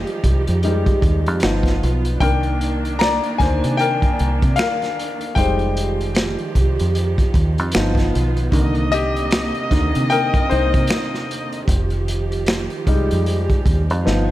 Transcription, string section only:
0, 0, Header, 1, 2, 480
1, 0, Start_track
1, 0, Key_signature, -3, "minor"
1, 0, Tempo, 789474
1, 1341, Time_signature, 4, 2, 24, 8
1, 8701, End_track
2, 0, Start_track
2, 0, Title_t, "String section"
2, 0, Program_c, 0, 48
2, 0, Note_on_c, 0, 51, 81
2, 0, Note_on_c, 0, 53, 70
2, 0, Note_on_c, 0, 67, 86
2, 845, Note_off_c, 0, 53, 0
2, 847, Note_off_c, 0, 67, 0
2, 865, Note_on_c, 0, 59, 65
2, 865, Note_on_c, 0, 65, 83
2, 1322, Note_off_c, 0, 51, 0
2, 1338, Note_off_c, 0, 65, 0
2, 1339, Note_off_c, 0, 59, 0
2, 1347, Note_on_c, 0, 51, 78
2, 1347, Note_on_c, 0, 58, 68
2, 1347, Note_on_c, 0, 62, 73
2, 3245, Note_off_c, 0, 51, 0
2, 3245, Note_off_c, 0, 58, 0
2, 3245, Note_off_c, 0, 62, 0
2, 3257, Note_on_c, 0, 51, 76
2, 3259, Note_on_c, 0, 67, 82
2, 3260, Note_on_c, 0, 53, 75
2, 4686, Note_off_c, 0, 53, 0
2, 4686, Note_off_c, 0, 67, 0
2, 4701, Note_on_c, 0, 59, 67
2, 4702, Note_on_c, 0, 65, 80
2, 5160, Note_off_c, 0, 51, 0
2, 5176, Note_off_c, 0, 59, 0
2, 5177, Note_off_c, 0, 65, 0
2, 5180, Note_on_c, 0, 58, 73
2, 5180, Note_on_c, 0, 75, 93
2, 5181, Note_on_c, 0, 48, 75
2, 7081, Note_off_c, 0, 58, 0
2, 7081, Note_off_c, 0, 75, 0
2, 7082, Note_off_c, 0, 48, 0
2, 7096, Note_on_c, 0, 51, 78
2, 7097, Note_on_c, 0, 53, 69
2, 7097, Note_on_c, 0, 67, 86
2, 8525, Note_off_c, 0, 53, 0
2, 8525, Note_off_c, 0, 67, 0
2, 8542, Note_on_c, 0, 59, 64
2, 8542, Note_on_c, 0, 65, 75
2, 8701, Note_off_c, 0, 51, 0
2, 8701, Note_off_c, 0, 59, 0
2, 8701, Note_off_c, 0, 65, 0
2, 8701, End_track
0, 0, End_of_file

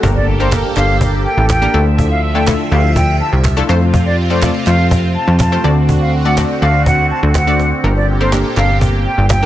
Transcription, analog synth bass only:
0, 0, Header, 1, 2, 480
1, 0, Start_track
1, 0, Tempo, 487805
1, 33, Time_signature, 4, 2, 24, 8
1, 9306, End_track
2, 0, Start_track
2, 0, Title_t, "Analog synth bass"
2, 0, Program_c, 0, 38
2, 32, Note_on_c, 0, 31, 112
2, 624, Note_off_c, 0, 31, 0
2, 753, Note_on_c, 0, 31, 93
2, 1246, Note_off_c, 0, 31, 0
2, 1351, Note_on_c, 0, 33, 96
2, 1648, Note_off_c, 0, 33, 0
2, 1713, Note_on_c, 0, 38, 104
2, 2502, Note_off_c, 0, 38, 0
2, 2672, Note_on_c, 0, 38, 92
2, 3165, Note_off_c, 0, 38, 0
2, 3274, Note_on_c, 0, 36, 97
2, 3569, Note_off_c, 0, 36, 0
2, 3633, Note_on_c, 0, 41, 104
2, 4421, Note_off_c, 0, 41, 0
2, 4594, Note_on_c, 0, 41, 91
2, 5086, Note_off_c, 0, 41, 0
2, 5191, Note_on_c, 0, 41, 97
2, 5488, Note_off_c, 0, 41, 0
2, 5551, Note_on_c, 0, 38, 103
2, 6341, Note_off_c, 0, 38, 0
2, 6514, Note_on_c, 0, 38, 88
2, 7007, Note_off_c, 0, 38, 0
2, 7113, Note_on_c, 0, 38, 95
2, 7606, Note_off_c, 0, 38, 0
2, 7712, Note_on_c, 0, 31, 107
2, 8304, Note_off_c, 0, 31, 0
2, 8433, Note_on_c, 0, 31, 91
2, 8926, Note_off_c, 0, 31, 0
2, 9033, Note_on_c, 0, 31, 97
2, 9306, Note_off_c, 0, 31, 0
2, 9306, End_track
0, 0, End_of_file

